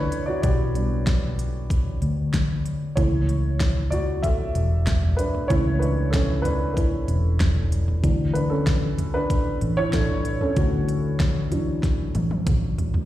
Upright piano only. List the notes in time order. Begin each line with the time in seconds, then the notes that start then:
Already playing: G3 B3 C#4 D4 E4 A4 B4 C#5
0.26 F#4 D5
0.42 G4 D5
0.75 G3 B3 D4
2.96 E3 A3 E4 C#5
3.90 F#4 D5
4.23 A4 E5
5.17 D4 B4
5.48 E3 A3 C#4 E4 C#5
5.79 D4 B4
6.10 C#4 A4
6.42 D4 B4
6.74 E4 B4
8.02 E3 F#3 D4
8.34 D4 B4
8.50 C#4 A4
9.14 D4 B4
9.77 E4 C#5
9.93 D4 A4
10.41 C#4 A4
10.57 A3 F#4
11.51 E3 F#3 D4